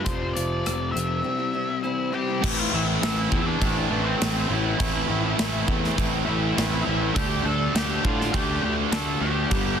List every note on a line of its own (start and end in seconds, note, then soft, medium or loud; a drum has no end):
0.03 0.32 F1 medium
0.03 0.92 F2 medium
0.03 0.92 C3 medium
0.03 0.63 F3 medium
0.03 0.91 F3 medium
0.03 0.33 G3 medium
0.03 0.34 C4 medium
0.03 0.34 F4 medium
0.03 0.34 A4 medium
0.03 0.36 C5 medium
0.03 kick medium
0.03 closed hi-hat medium
0.34 0.62 F1 medium
0.34 0.64 G3 medium
0.34 0.64 C4 medium
0.34 0.65 F4 medium
0.34 0.65 A4 medium
0.34 0.91 D5 medium
0.34 closed hi-hat medium
0.64 0.92 F1 medium
0.64 1.22 F3 medium
0.64 0.92 G3 medium
0.64 0.93 C4 medium
0.64 0.94 F4 medium
0.64 0.94 A4 medium
0.64 cross-stick medium
0.64 closed hi-hat medium
0.92 1.21 F1 medium
0.92 1.21 C3 medium
0.92 1.21 F3 medium
0.92 1.09 G3 medium
0.92 1.09 C4 medium
0.92 1.09 F4 medium
0.92 1.08 A4 medium
0.92 1.78 E5 medium
0.96 1.23 F2 medium
0.96 closed hi-hat medium
1.09 muted steel-string acoustic guitar stroke soft
1.22 2.10 C3 medium
1.22 1.68 C3 medium
1.22 1.52 E3 medium
1.22 2.11 G3 medium
1.22 1.39 G3 medium
1.22 1.38 C4 medium
1.22 2.11 C4 medium
1.22 1.37 E4 medium
1.38 1.53 G3 soft
1.38 1.53 C4 medium
1.38 1.54 E4 medium
1.53 1.69 E3 medium
1.53 1.69 G3 medium
1.53 1.68 C4 medium
1.53 1.68 E4 medium
1.69 muted steel-string acoustic guitar stroke soft
1.83 2.41 C3 medium
1.83 2.11 E3 medium
1.83 2.12 G3 medium
1.83 2.13 C4 medium
1.83 2.11 E4 soft
1.83 2.13 E4 medium
1.83 2.11 E5 medium
2.12 2.42 C3 medium
2.12 2.40 E3 medium
2.12 2.29 G3 medium
2.12 2.41 G3 medium
2.12 2.40 C4 medium
2.12 2.28 C4 medium
2.12 2.27 E4 medium
2.12 2.55 G4 medium
2.12 2.59 G5 medium
2.28 2.42 G3 soft
2.28 2.42 C4 medium
2.28 2.41 E4 medium
2.41 2.67 A1 medium
2.41 2.70 A2 medium
2.41 2.71 E3 loud
2.41 2.72 A3 medium
2.41 2.72 C4 loud
2.41 2.72 E4 loud
2.41 kick loud
2.41 crash loud
2.41 crash medium
2.59 2.73 F4 medium
2.59 2.73 F5 loud
2.71 2.97 A1 medium
2.71 3.00 A2 medium
2.71 3.01 E3 medium
2.71 3.02 A3 medium
2.71 3.01 C4 medium
2.71 3.02 E4 medium
2.71 2.82 E5 loud
2.75 2.82 E4 medium
3.01 3.26 A1 loud
3.01 3.29 A2 medium
3.01 3.31 E3 loud
3.01 3.30 A3 medium
3.01 3.31 C4 medium
3.01 3.31 E4 loud
3.01 3.44 E4 medium
3.01 3.48 E5 loud
3.01 snare loud
3.01 crash medium
3.30 3.55 E2 medium
3.30 3.58 A2 medium
3.30 3.57 E3 medium
3.30 3.59 A3 medium
3.30 3.59 C4 medium
3.30 3.59 E4 medium
3.30 kick medium
3.46 4.02 D4 medium
3.46 4.07 D5 medium
3.59 3.85 A1 medium
3.59 3.88 A2 medium
3.59 3.89 E3 medium
3.59 3.90 A3 medium
3.59 3.89 C4 loud
3.59 3.89 E4 loud
3.59 kick medium
3.59 crash medium
3.90 4.14 A1 medium
3.90 4.17 A2 medium
3.90 4.17 E3 medium
3.90 4.18 A3 medium
3.90 4.18 C4 medium
3.90 4.18 E4 loud
4.05 4.46 C4 medium
4.05 4.50 C5 medium
4.18 4.44 A1 medium
4.18 4.46 A2 medium
4.18 4.47 E3 loud
4.18 4.48 A3 medium
4.18 4.47 C4 loud
4.18 4.48 E4 medium
4.18 snare loud
4.18 crash medium
4.47 4.73 A1 medium
4.47 4.76 A2 medium
4.47 4.76 E3 medium
4.47 4.78 A3 medium
4.47 4.77 C4 medium
4.47 4.77 E4 medium
4.53 5.65 E4 medium
4.53 5.65 E5 medium
4.77 5.03 A1 medium
4.77 5.05 A2 medium
4.77 5.05 E3 medium
4.77 5.07 A3 medium
4.77 5.06 C4 loud
4.77 5.07 E4 medium
4.77 kick loud
4.77 crash medium
5.06 5.33 A1 medium
5.06 5.36 A2 medium
5.06 5.36 E3 medium
5.06 5.37 A3 medium
5.06 5.38 C4 medium
5.06 5.37 E4 medium
5.37 5.62 A1 loud
5.37 5.65 A2 medium
5.37 5.66 E3 loud
5.37 5.67 A3 loud
5.37 5.67 C4 loud
5.37 5.67 E4 loud
5.37 snare loud
5.37 crash medium
5.66 5.91 E2 medium
5.66 5.94 A2 medium
5.66 5.95 E3 medium
5.66 5.97 A3 medium
5.66 5.96 C4 loud
5.66 5.96 E4 medium
5.66 kick medium
5.84 snare soft
5.96 6.21 A1 medium
5.96 6.23 A2 medium
5.96 6.24 E3 loud
5.96 6.24 A3 loud
5.96 6.25 C4 loud
5.96 6.25 E4 loud
5.96 kick medium
5.96 crash medium
6.25 6.53 A2 medium
6.25 6.54 E3 medium
6.25 6.56 A3 loud
6.25 6.55 C4 medium
6.25 6.80 E4 medium
6.25 6.55 E4 loud
6.29 6.51 A1 medium
6.29 6.82 E5 medium
6.55 6.80 A1 medium
6.55 6.84 A2 loud
6.55 6.84 E3 loud
6.55 6.85 A3 loud
6.55 6.85 C4 loud
6.55 6.84 E4 medium
6.55 snare loud
6.55 crash medium
6.85 7.10 A1 medium
6.85 7.13 A2 medium
6.85 7.13 E3 medium
6.85 7.13 A3 loud
6.85 7.13 C4 medium
6.85 7.13 E4 loud
6.85 7.13 E4 medium
6.90 7.17 E5 medium
7.13 7.39 D2 loud
7.13 7.43 D3 loud
7.13 7.45 G3 loud
7.13 7.45 A3 loud
7.13 7.45 D4 loud
7.13 7.42 G4 medium
7.13 7.46 G5 loud
7.13 kick loud
7.13 crash medium
7.44 7.68 D2 medium
7.44 7.72 D3 medium
7.44 7.73 G3 medium
7.44 7.74 A3 loud
7.44 7.73 D4 medium
7.44 7.72 A4 medium
7.44 7.76 A5 medium
7.73 7.98 D2 loud
7.73 8.02 D3 loud
7.73 8.04 G3 loud
7.73 8.04 A3 loud
7.73 8.04 D4 loud
7.73 8.01 G4 medium
7.73 snare loud
7.73 crash medium
7.78 8.06 G5 medium
8.03 8.28 A2 medium
8.03 8.32 D3 medium
8.03 8.33 G3 medium
8.03 8.34 A3 loud
8.03 8.34 D4 medium
8.03 8.32 F4 medium
8.03 8.35 F5 medium
8.03 kick medium
8.21 snare soft
8.33 8.57 D2 loud
8.33 8.61 D3 medium
8.33 8.62 G3 loud
8.33 8.63 A3 loud
8.33 8.63 D4 loud
8.33 8.60 G4 medium
8.33 8.64 G5 medium
8.33 kick medium
8.33 crash medium
8.62 8.85 D2 medium
8.62 8.91 D3 medium
8.62 8.91 G3 loud
8.62 8.92 A3 medium
8.62 8.92 D4 loud
8.62 8.72 G4 medium
8.62 8.73 G5 medium
8.92 9.15 D2 loud
8.92 9.20 D3 loud
8.92 9.21 G3 loud
8.92 9.23 A3 loud
8.92 9.22 D4 loud
8.92 9.19 A4 medium
8.92 9.21 A5 medium
8.92 snare loud
8.92 crash medium
9.21 9.44 D2 loud
9.21 9.48 D3 medium
9.21 9.49 G3 medium
9.21 9.50 A3 medium
9.21 9.49 D4 loud
9.21 9.76 G4 medium
9.21 9.80 G5 medium
9.49 9.74 G1 medium
9.49 9.79 G2 medium
9.49 9.79 D3 medium
9.49 9.79 G3 loud
9.49 9.80 B3 loud
9.49 9.80 D4 loud
9.49 kick loud
9.49 crash medium